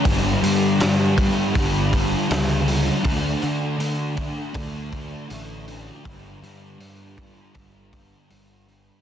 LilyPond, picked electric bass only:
\new Staff \with { instrumentName = "Picked electric bass" } { \clef bass \time 4/4 \key g \lydian \tempo 4 = 80 g,,8 g,4. g,,4 cis,4 | d,8 d4. d,4 a,,4 | g,,8 g,4. g,,4 g,,4 | }